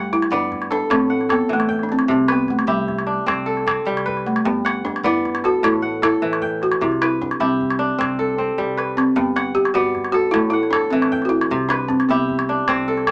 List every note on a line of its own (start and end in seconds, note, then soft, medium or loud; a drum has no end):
0.00 0.21 G1 medium
0.00 0.95 G2 medium
0.00 0.12 G3 medium
0.00 0.61 D4 medium
0.00 0.89 F#5 medium
0.13 0.32 E4 medium
0.13 calabash thump medium
0.13 calabash click soft
0.22 calabash click soft
0.31 0.80 G1 loud
0.31 2.14 B3 medium
0.31 0.71 D4 medium
0.31 1.43 D5 medium
0.52 calabash thump medium
0.52 calabash click soft
0.62 calabash click soft
0.71 0.90 D4 loud
0.71 1.29 A4 medium
0.71 calabash click soft
0.90 1.40 A1 medium
0.90 2.14 A2 medium
0.90 1.28 C4 medium
0.90 calabash thump medium
0.90 calabash click medium
1.10 1.75 F#5 medium
1.21 calabash click soft
1.29 1.51 B3 medium
1.29 2.61 A4 medium
1.29 calabash thump medium
1.29 calabash click medium
1.49 1.99 A1 medium
1.49 2.14 E3 medium
1.53 1.84 A3 medium
1.60 calabash click soft
1.69 2.62 G5 medium
1.69 calabash thump medium
1.79 calabash click soft
1.83 1.89 D4 medium
1.89 2.09 C4 medium
1.89 calabash click soft
1.99 calabash click soft
2.08 2.58 C2 medium
2.08 4.42 C3 medium
2.08 2.28 C4 medium
2.08 calabash thump medium
2.28 2.51 B3 medium
2.28 3.33 B4 medium
2.28 calabash click medium
2.48 2.68 A3 medium
2.48 calabash thump medium
2.48 calabash click soft
2.59 calabash click soft
2.67 3.17 C2 loud
2.67 3.44 G3 medium
2.67 4.24 E4 medium
2.67 4.09 G4 medium
2.88 calabash thump medium
2.88 calabash click soft
2.99 calabash click soft
3.07 4.75 D4 medium
3.07 calabash click soft
3.26 3.76 C2 medium
3.26 3.66 C4 medium
3.26 calabash thump medium
3.26 calabash click medium
3.46 4.78 A4 medium
3.57 calabash click soft
3.67 5.10 C4 medium
3.67 calabash thump medium
3.67 calabash click medium
3.85 4.35 C2 medium
3.85 4.51 G3 medium
3.97 calabash click medium
4.06 5.29 B4 medium
4.06 calabash thump medium
4.17 calabash click soft
4.26 4.35 A3 medium
4.26 calabash click soft
4.36 calabash click medium
4.45 4.95 G1 loud
4.45 5.69 G2 medium
4.45 4.86 B3 medium
4.45 calabash thump medium
4.65 5.61 F#5 medium
4.65 calabash click medium
4.85 4.94 D4 medium
4.85 calabash thump medium
4.85 calabash click soft
4.96 calabash click soft
5.04 5.53 G1 loud
5.04 6.87 B3 medium
5.04 5.46 E4 loud
5.04 6.15 D5 medium
5.25 calabash thump medium
5.25 calabash click soft
5.35 calabash click medium
5.44 5.65 F#4 loud
5.44 6.02 A4 medium
5.44 calabash click soft
5.63 6.13 A1 medium
5.63 6.87 A2 medium
5.63 6.01 E4 medium
5.63 calabash thump medium
5.63 calabash click medium
5.82 6.48 F#5 medium
6.02 6.64 E4 loud
6.02 7.34 A4 medium
6.02 calabash thump medium
6.02 calabash click medium
6.22 6.72 A1 medium
6.22 6.87 E3 medium
6.33 calabash click soft
6.42 7.35 G5 medium
6.42 calabash thump medium
6.62 6.83 F#4 medium
6.62 calabash click soft
6.72 calabash click medium
6.81 7.30 C2 medium
6.81 9.15 C3 medium
6.81 7.01 E4 medium
6.81 calabash thump medium
6.81 calabash click soft
6.92 calabash click soft
7.01 7.22 E4 medium
7.01 8.04 B4 medium
7.01 calabash click medium
7.22 7.30 D4 medium
7.22 calabash thump medium
7.31 calabash click soft
7.40 7.89 C2 loud
7.40 7.96 C4 medium
7.40 8.97 E4 medium
7.40 8.82 G4 medium
7.61 calabash thump medium
7.70 calabash click soft
7.79 9.47 D4 medium
7.98 8.48 C2 medium
7.98 8.38 C4 medium
7.98 calabash thump medium
7.98 calabash click medium
8.19 9.51 A4 medium
8.19 calabash thump soft
8.38 9.81 C4 medium
8.38 calabash thump soft
8.58 9.07 C2 medium
8.58 9.22 G3 medium
8.58 calabash thump soft
8.77 10.00 B4 medium
8.77 calabash click soft
8.97 9.17 C4 medium
8.97 calabash click medium
9.16 9.65 G1 medium
9.16 10.39 G2 medium
9.16 9.53 B3 medium
9.16 calabash thump soft
9.36 10.32 F#5 medium
9.36 calabash click medium
9.55 9.76 G4 medium
9.55 calabash thump medium
9.65 calabash click soft
9.74 10.24 G1 medium
9.74 11.57 B3 medium
9.74 10.11 F#4 medium
9.74 10.86 D5 medium
9.95 calabash thump medium
9.95 calabash click soft
10.05 calabash click soft
10.12 10.34 F#4 medium
10.12 10.73 A4 medium
10.12 calabash click soft
10.31 10.83 A1 medium
10.31 11.56 A2 medium
10.31 10.49 E4 medium
10.31 calabash thump medium
10.31 calabash click medium
10.50 10.70 E4 loud
10.50 11.18 F#5 medium
10.63 calabash click soft
10.71 10.90 D4 medium
10.71 12.05 A4 medium
10.71 calabash thump medium
10.71 calabash click medium
10.90 11.41 A1 medium
10.90 11.56 E3 medium
10.90 11.25 C4 medium
11.02 calabash click medium
11.12 12.05 G5 medium
11.12 calabash thump medium
11.22 11.32 F#4 medium
11.22 calabash click soft
11.29 11.71 E4 medium
11.41 calabash click medium
11.51 12.00 C2 medium
11.51 13.11 C3 medium
11.51 calabash thump medium
11.69 11.90 D4 medium
11.69 12.74 B4 medium
11.69 calabash click medium
11.89 11.98 C4 medium
11.89 calabash thump medium
11.89 calabash click soft
12.00 calabash click soft
12.09 12.59 C2 loud
12.09 12.83 B3 medium
12.09 13.11 E4 medium
12.09 13.11 G4 medium
12.29 calabash thump medium
12.39 calabash click medium
12.49 13.11 D4 medium
12.49 calabash click soft
12.68 13.11 C2 medium
12.68 13.08 C4 medium
12.68 calabash thump medium
12.68 calabash click medium
12.88 13.11 A4 medium
12.97 calabash click soft
13.07 13.11 C4 medium
13.07 calabash thump medium
13.07 calabash click medium